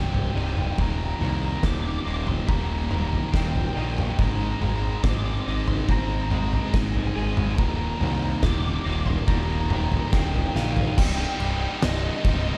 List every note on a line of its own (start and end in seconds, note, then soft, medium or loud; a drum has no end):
0.00 0.28 C1 medium
0.00 0.33 C2 medium
0.00 0.34 G2 medium
0.00 0.78 G2 medium
0.00 0.34 C3 medium
0.00 0.78 C3 medium
0.00 0.78 G3 medium
0.00 0.11 G5 medium
0.11 0.19 G5 medium
0.11 floor tom medium
0.19 0.27 G5 medium
0.28 0.35 G5 medium
0.34 0.70 C1 medium
0.34 0.75 C2 medium
0.34 0.76 G2 medium
0.34 0.76 C3 medium
0.34 3.75 D#4 medium
0.34 0.43 G5 medium
0.44 0.51 G5 medium
0.51 0.59 G5 medium
0.57 0.67 G5 medium
0.57 mid tom medium
0.67 0.75 G5 medium
0.75 1.12 D#1 medium
0.75 1.19 D#2 medium
0.75 2.91 D#2 medium
0.75 1.20 A#2 medium
0.75 1.21 D#3 medium
0.75 0.80 G5 medium
0.75 kick medium
0.75 floor tom medium
0.81 0.89 A#5 medium
0.90 0.96 A#5 medium
0.96 1.04 A#5 medium
1.04 1.12 A#5 medium
1.12 1.19 A#5 medium
1.20 1.55 C2 medium
1.20 1.61 D#2 medium
1.20 1.62 A#2 medium
1.20 2.88 D#3 medium
1.20 1.63 D#3 medium
1.20 1.27 A#5 medium
1.20 mid tom medium
1.28 1.35 A#5 medium
1.35 1.43 A#5 medium
1.44 1.51 A#5 medium
1.52 1.58 A#5 medium
1.59 2.04 D#2 medium
1.59 1.66 A#5 medium
1.63 1.98 D#1 medium
1.63 2.05 A#2 medium
1.63 2.05 D#3 medium
1.63 2.46 G3 medium
1.63 1.73 D6 medium
1.63 kick loud
1.63 snare medium
1.63 floor tom medium
1.74 1.82 D6 medium
1.82 1.89 D6 medium
1.89 1.97 D6 medium
1.98 2.06 D6 medium
2.05 2.40 D#1 medium
2.05 2.45 D#2 medium
2.05 2.46 A#2 medium
2.05 2.47 D#3 medium
2.05 3.32 A#3 medium
2.05 2.14 D6 medium
2.14 2.22 D6 medium
2.23 2.28 D6 medium
2.27 2.48 C6 medium
2.27 floor tom medium
2.46 3.16 D#1 medium
2.46 2.87 D#2 loud
2.46 2.89 A#2 loud
2.46 2.89 D#3 loud
2.46 4.18 G3 medium
2.46 2.56 A#5 medium
2.46 kick loud
2.63 2.71 A#5 medium
2.72 2.78 A#5 medium
2.79 2.85 A#5 medium
2.86 3.31 D#2 medium
2.86 4.18 D#3 medium
2.86 2.93 A#5 medium
2.90 3.32 A#2 medium
2.90 3.32 D#3 medium
2.90 3.00 A#5 medium
2.90 mid tom medium
3.01 3.07 A#5 medium
3.07 3.14 A#5 medium
3.13 3.22 A#5 medium
3.13 floor tom medium
3.22 3.30 A#5 medium
3.32 3.68 D#1 medium
3.32 3.74 D#2 medium
3.32 3.75 A#2 medium
3.32 3.76 D#3 medium
3.32 4.20 A#3 medium
3.32 3.43 G5 medium
3.32 kick loud
3.32 snare medium
3.43 3.51 G5 medium
3.52 3.58 G5 medium
3.52 floor tom medium
3.58 3.66 G5 medium
3.66 3.74 G5 medium
3.74 4.10 A#1 medium
3.74 4.16 D#2 medium
3.74 4.16 A#2 medium
3.74 4.17 D#3 medium
3.74 5.47 D#4 medium
3.74 3.81 G5 medium
3.82 3.90 G5 medium
3.90 3.97 G5 medium
3.97 4.05 G5 medium
3.97 mid tom medium
4.06 4.13 G5 medium
4.14 6.30 G#2 medium
4.14 4.22 G5 medium
4.18 4.53 G#1 medium
4.18 4.59 G#2 medium
4.18 4.59 D#3 medium
4.18 4.60 G#3 loud
4.18 4.27 A#5 medium
4.18 kick loud
4.18 floor tom medium
4.27 4.35 A#5 medium
4.37 4.42 A#5 medium
4.43 4.51 A#5 medium
4.51 4.59 A#5 medium
4.60 4.95 G#1 medium
4.60 5.02 G#2 medium
4.60 5.03 D#3 medium
4.60 6.31 G#3 medium
4.60 5.04 G#3 medium
4.60 4.66 A#5 medium
4.60 mid tom medium
4.67 4.75 A#5 medium
4.76 4.83 A#5 medium
4.83 4.89 A#5 medium
4.90 4.98 A#5 medium
4.99 5.03 A#5 medium
5.03 5.37 G#1 medium
5.03 5.45 G#2 medium
5.03 5.45 D#3 medium
5.03 5.46 G#3 medium
5.03 5.89 C4 medium
5.03 5.10 D6 loud
5.03 kick loud
5.03 snare medium
5.03 floor tom loud
5.10 5.18 D6 medium
5.19 5.26 D6 medium
5.26 5.33 D6 medium
5.34 5.40 D6 medium
5.41 5.48 D6 medium
5.46 5.81 G#1 medium
5.46 5.87 G#2 medium
5.46 5.88 D#3 medium
5.46 5.88 G#3 medium
5.46 6.73 D#4 medium
5.46 5.55 D6 medium
5.55 5.63 D6 medium
5.67 5.89 C6 medium
5.67 floor tom medium
5.88 6.56 G#1 medium
5.88 6.30 G#2 loud
5.88 6.31 D#3 loud
5.88 6.31 G#3 loud
5.88 8.42 C4 medium
5.88 5.98 A#5 medium
5.88 kick loud
5.98 6.05 A#5 medium
6.06 6.14 A#5 medium
6.14 6.21 A#5 medium
6.22 6.29 A#5 medium
6.29 6.72 G#2 medium
6.29 6.72 D#3 medium
6.29 7.59 G#3 medium
6.29 6.74 G#3 medium
6.29 6.37 A#5 medium
6.29 mid tom medium
6.37 6.45 A#5 medium
6.45 6.53 A#5 medium
6.53 6.61 A#5 medium
6.53 floor tom medium
6.61 6.69 A#5 medium
6.69 7.14 G#2 medium
6.69 6.77 A#5 medium
6.73 7.07 G#1 loud
6.73 7.14 D#3 medium
6.73 7.15 G#3 medium
6.73 8.84 D#4 medium
6.73 6.83 G#5 medium
6.73 kick loud
6.73 snare medium
6.84 6.91 G#5 medium
6.92 6.99 G#5 medium
6.92 floor tom medium
6.99 7.07 G#5 medium
7.07 7.15 G#5 medium
7.15 7.58 G#1 medium
7.15 7.55 G#2 medium
7.15 7.56 D#3 medium
7.15 7.56 G#3 medium
7.15 7.58 G#4 medium
7.15 7.22 G#5 medium
7.23 7.30 G#5 medium
7.30 7.38 G#5 medium
7.37 7.46 G#5 medium
7.37 mid tom medium
7.47 7.54 G#5 medium
7.55 7.92 D#1 loud
7.55 7.98 D#2 loud
7.55 9.70 D#2 medium
7.55 7.99 A#2 loud
7.55 7.62 G#5 medium
7.55 kick loud
7.55 floor tom medium
7.59 7.99 D#3 loud
7.59 7.67 A#5 medium
7.67 7.75 A#5 medium
7.75 7.82 A#5 medium
7.83 7.90 A#5 medium
7.90 7.97 A#5 medium
7.97 8.42 D#2 medium
7.97 8.43 A#2 medium
7.97 9.68 D#3 medium
7.97 8.43 D#3 medium
7.97 8.05 A#5 medium
7.97 mid tom medium
8.01 8.35 C2 medium
8.07 8.14 A#5 medium
8.15 8.23 A#5 medium
8.23 8.29 A#5 medium
8.30 8.38 A#5 medium
8.38 9.26 G3 medium
8.38 8.43 A#5 medium
8.43 8.77 D#1 medium
8.43 8.83 D#2 medium
8.43 8.85 A#2 medium
8.43 8.85 D#3 medium
8.43 8.51 D6 loud
8.43 kick loud
8.43 snare medium
8.43 floor tom loud
8.52 8.60 D6 medium
8.60 8.67 D6 medium
8.67 8.75 D6 medium
8.76 8.84 D6 medium
8.84 9.20 D#1 medium
8.84 9.26 D#2 medium
8.84 9.27 A#2 medium
8.84 9.28 D#3 medium
8.84 10.11 A#3 medium
8.84 8.92 D6 medium
8.92 9.00 D6 medium
9.01 9.06 D6 medium
9.06 9.27 C6 medium
9.06 floor tom medium
9.27 9.95 D#1 medium
9.27 9.68 D#2 loud
9.27 9.69 A#2 loud
9.27 9.70 D#3 loud
9.27 10.97 G3 medium
9.27 9.34 A#5 medium
9.27 kick loud
9.35 9.43 A#5 medium
9.44 9.51 A#5 medium
9.51 9.59 A#5 medium
9.59 9.67 A#5 medium
9.68 10.11 D#2 medium
9.68 10.12 A#2 loud
9.68 10.97 D#3 medium
9.68 10.13 D#3 loud
9.68 9.76 A#5 medium
9.68 mid tom medium
9.77 9.84 A#5 medium
9.84 9.91 A#5 medium
9.92 9.99 A#5 medium
9.92 floor tom medium
9.99 10.07 A#5 medium
10.07 10.12 A#5 medium
10.12 10.47 D#1 medium
10.12 10.54 D#2 medium
10.12 10.55 A#2 loud
10.12 10.55 D#3 medium
10.12 10.97 A#3 medium
10.12 10.20 G5 medium
10.12 kick loud
10.12 snare medium
10.21 10.27 G5 medium
10.27 10.34 G5 medium
10.34 10.42 G5 medium
10.34 floor tom medium
10.43 10.48 G5 medium
10.49 10.56 G5 medium
10.54 10.89 A#1 medium
10.54 10.95 D#2 medium
10.54 10.95 A#2 medium
10.54 10.95 D#3 medium
10.54 10.97 D#4 medium
10.54 10.64 F5 loud
10.54 10.63 G5 medium
10.54 snare medium
10.63 10.72 F5 medium
10.63 10.70 G5 medium
10.72 10.79 F5 medium
10.72 10.77 G5 medium
10.77 10.87 F5 medium
10.77 10.85 G5 soft
10.77 floor tom loud
10.87 10.95 F5 medium
10.87 10.94 G5 medium
10.97 11.24 C1 medium
10.97 11.61 C2 medium
10.97 11.36 G2 medium
10.97 11.20 C3 loud
10.97 11.19 G3 loud
10.97 11.17 D#4 loud
10.97 11.05 G5 loud
10.97 kick loud
10.97 crash loud
10.97 crash medium
11.14 11.41 D#4 medium
11.14 11.21 G5 loud
11.19 11.38 C3 medium
11.19 11.40 G3 medium
11.19 11.29 G5 medium
11.29 11.37 G5 loud
11.38 11.66 C1 medium
11.38 11.81 G2 medium
11.38 11.62 C3 medium
11.38 11.61 G3 medium
11.38 11.59 D#4 medium
11.38 11.46 G5 medium
11.38 crash medium
11.46 11.53 G5 loud
11.53 11.61 G5 medium
11.59 11.81 C3 medium
11.59 11.83 G3 medium
11.59 11.84 D#4 medium
11.59 11.68 G5 loud
11.69 11.76 G5 medium
11.77 11.82 G5 medium
11.81 12.08 C1 medium
11.81 12.58 C2 medium
11.81 12.23 G2 medium
11.81 12.24 C3 medium
11.81 12.26 G3 medium
11.81 12.27 D#4 loud
11.81 11.89 D#5 loud
11.81 snare loud
11.81 crash medium
11.90 11.96 D#5 medium
11.96 12.03 D#5 medium
12.03 12.10 D#5 medium
12.12 12.18 D#5 medium
12.19 12.26 D#5 medium
12.24 12.50 C1 medium
12.24 12.58 G2 medium
12.24 12.58 C3 medium
12.24 12.58 G3 medium
12.24 12.58 D#4 medium
12.24 12.34 D#5 medium
12.24 kick medium
12.24 crash medium
12.34 12.41 D#5 medium
12.41 12.48 D#5 medium
12.48 12.55 D#5 medium